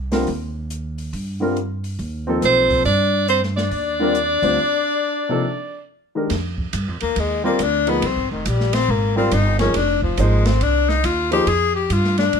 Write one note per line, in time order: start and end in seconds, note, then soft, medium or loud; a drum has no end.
0.00 0.24 C2 medium
0.11 0.26 D3 medium
0.11 0.26 G3 medium
0.11 0.26 C4 medium
0.11 0.26 F4 medium
0.11 0.26 A#4 medium
0.11 snare soft
0.11 open hi-hat soft
0.27 1.10 D#2 medium
0.27 open hi-hat soft
0.70 closed hi-hat soft
0.98 open hi-hat soft
1.13 1.95 G2 medium
1.13 open hi-hat soft
1.40 1.55 D3 medium
1.40 1.55 G3 medium
1.40 1.55 C4 medium
1.40 1.55 F4 medium
1.40 1.56 A#4 medium
1.57 closed hi-hat soft
1.84 open hi-hat soft
1.99 2.39 D#2 medium
1.99 open hi-hat soft
2.27 2.83 F3 medium
2.27 2.83 A#3 medium
2.27 2.82 C4 medium
2.27 2.83 D#4 medium
2.27 2.84 A4 medium
2.42 2.82 B1 medium
2.42 2.83 C4 medium
2.42 2.84 C5 loud
2.42 snare soft
2.42 closed hi-hat soft
2.70 kick soft
2.70 open hi-hat soft
2.85 3.68 G2 medium
2.85 3.26 D4 medium
2.85 3.26 D5 medium
2.85 open hi-hat soft
3.28 3.41 C4 medium
3.28 3.42 C5 medium
3.28 closed hi-hat soft
3.43 snare soft
3.55 5.82 D4 medium
3.55 5.83 D5 medium
3.55 snare soft
3.71 4.38 D#2 medium
3.71 open hi-hat soft
4.00 4.13 D3 medium
4.00 4.14 G3 medium
4.00 4.14 C4 medium
4.00 4.14 F4 medium
4.00 4.14 A#4 medium
4.15 closed hi-hat soft
4.42 4.57 D2 medium
4.42 4.56 D3 medium
4.42 4.56 G3 medium
4.42 4.57 C4 medium
4.42 4.57 F4 soft
4.42 4.57 C5 medium
4.42 open hi-hat soft
5.29 5.43 C3 medium
5.29 5.43 F3 medium
5.29 5.43 A#3 medium
5.29 5.43 D#4 medium
5.29 5.44 A4 medium
6.15 6.29 D#3 medium
6.15 6.29 G#3 medium
6.15 6.29 D4 medium
6.15 6.30 G4 soft
6.15 6.30 A#4 medium
6.30 6.72 F2 medium
6.30 snare soft
6.30 ride medium
6.58 kick soft
6.73 6.88 G2 medium
6.73 hi-hat pedal soft
6.73 ride medium
6.88 7.02 F2 medium
7.00 7.15 D#2 medium
7.00 7.21 A#3 medium
7.00 ride soft
7.16 7.58 D#2 medium
7.16 7.45 G#3 medium
7.16 ride medium
7.44 7.58 G3 medium
7.44 7.64 A#3 medium
7.44 7.58 C4 medium
7.44 7.58 F4 medium
7.44 7.59 A#4 medium
7.44 7.59 D5 medium
7.59 8.01 D2 medium
7.59 7.90 D4 medium
7.59 hi-hat pedal medium
7.59 ride medium
7.87 8.01 F3 medium
7.87 8.01 A#3 medium
7.87 8.07 B3 medium
7.87 8.01 D#4 medium
7.87 8.01 G#4 medium
7.87 8.02 D#5 medium
7.87 ride soft
8.02 8.18 C2 medium
8.02 8.30 C4 medium
8.02 ride medium
8.17 8.31 G#1 medium
8.31 8.45 F1 medium
8.31 8.49 D#3 medium
8.45 8.87 A#1 medium
8.45 8.76 G3 medium
8.45 hi-hat pedal medium
8.45 ride medium
8.60 snare soft
8.73 8.92 C4 loud
8.73 snare soft
8.73 ride medium
8.88 9.30 G#1 medium
8.88 9.16 A#3 medium
9.16 9.30 G3 medium
9.16 9.30 C4 medium
9.16 9.35 C4 medium
9.16 9.30 F4 medium
9.16 9.31 A#4 medium
9.16 9.31 D5 medium
9.31 9.74 G1 medium
9.31 9.59 D#4 medium
9.31 hi-hat pedal soft
9.31 ride medium
9.59 9.73 F3 medium
9.59 9.73 A#3 medium
9.59 9.78 C#4 medium
9.59 9.74 D#4 medium
9.59 9.74 G#4 medium
9.59 9.74 A#4 medium
9.59 snare soft
9.59 ride soft
9.74 10.16 F1 medium
9.74 10.03 D4 medium
9.74 ride medium
10.02 10.21 F3 medium
10.02 kick medium
10.17 10.60 G#1 medium
10.17 10.43 F3 medium
10.17 10.48 G#3 medium
10.17 10.43 A#3 medium
10.17 10.43 D#4 medium
10.17 10.44 G#4 medium
10.17 10.44 C5 medium
10.17 hi-hat pedal medium
10.17 ride medium
10.45 10.64 C4 medium
10.45 snare medium
10.45 ride soft
10.61 11.03 C2 medium
10.61 10.91 D4 medium
10.61 ride medium
10.89 11.07 D#4 medium
10.89 snare soft
11.04 11.46 D#2 medium
11.04 11.32 F4 medium
11.04 hi-hat pedal soft
11.04 ride medium
11.31 11.45 F3 medium
11.31 11.45 A#3 medium
11.31 11.46 D#4 medium
11.31 11.51 G4 loud
11.31 11.46 G#4 medium
11.31 11.46 C5 medium
11.31 ride soft
11.46 11.88 F2 medium
11.46 11.75 G#4 loud
11.46 ride medium
11.75 11.94 G4 medium
11.90 12.32 G2 medium
11.90 12.18 F4 medium
11.90 hi-hat pedal medium
11.90 ride medium
12.04 snare soft
12.18 12.40 D4 medium
12.18 snare soft
12.18 ride soft
12.33 12.40 G#2 medium
12.33 ride medium